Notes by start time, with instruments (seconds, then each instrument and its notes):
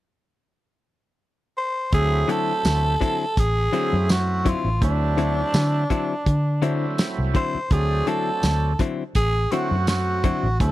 1.58 tenor saxophone C5
1.92 fingered electric bass D2, tonewheel organ F#3 A3 C4 E4, tenor saxophone G#4, kick, closed hi-hat
2.28 clean electric guitar D3 F#3 C4 E4, tenor saxophone A4, closed hi-hat
2.65 fingered electric bass D2, snare, closed hi-hat, tambourine
3.01 clean electric guitar D3 F#3 C4 E4, kick, closed hi-hat
3.37 fingered electric bass A1, tenor saxophone G#4, kick, closed hi-hat
3.73 clean electric guitar D3 F#3 C4 E4, tonewheel organ F#3 A3 C4 E4, closed hi-hat
3.93 fingered electric bass F#2
4.09 tenor saxophone F#4, snare, closed hi-hat, tambourine
4.45 clean electric guitar D3 F#3 C4 E4, tenor saxophone F4, kick, closed hi-hat
4.65 fingered electric bass A1
4.81 fingered electric bass D2, tonewheel organ F#3 A3 C4 E4, tenor saxophone D4, kick, closed hi-hat
5.17 clean electric guitar D3 F#3 C4 E4, closed hi-hat
5.54 fingered electric bass D3, snare, closed hi-hat, tambourine
5.90 clean electric guitar D3 F#3 C4 E4, kick, closed hi-hat
6.26 fingered electric bass D3, kick, closed hi-hat
6.62 clean electric guitar D3 F#3 C4 E4, tonewheel organ F#3 A3 C4 E4, closed hi-hat
6.98 snare, closed hi-hat, tambourine
7.18 fingered electric bass C2
7.34 clean electric guitar D3 F#3 C4 E4, tenor saxophone C5, kick, closed hi-hat
7.55 muted fingered electric bass stroke
7.70 fingered electric bass D2, tonewheel organ F#3 A3 C4 D4, tenor saxophone G#4, kick, closed hi-hat
8.07 clean electric guitar D3 F#3 C4 E4, tenor saxophone A4, closed hi-hat
8.43 fingered electric bass D2, snare, closed hi-hat, tambourine
8.79 clean electric guitar D3 F#3 C4 E4, kick, closed hi-hat
9.15 fingered electric bass A1, tenor saxophone G#4, kick, closed hi-hat
9.51 clean electric guitar D3 F#3 C4 E4, tonewheel organ F#3 A3 C4 F#4, tenor saxophone F#4, closed hi-hat
9.71 fingered electric bass F#2
9.87 tenor saxophone F#4, snare, closed hi-hat, tambourine
10.24 clean electric guitar D3 F#3 C4 E4, kick, closed hi-hat
10.43 fingered electric bass A1
10.60 fingered electric bass D2, tonewheel organ F#3 A3 C4 E4, tenor saxophone A4, kick, closed hi-hat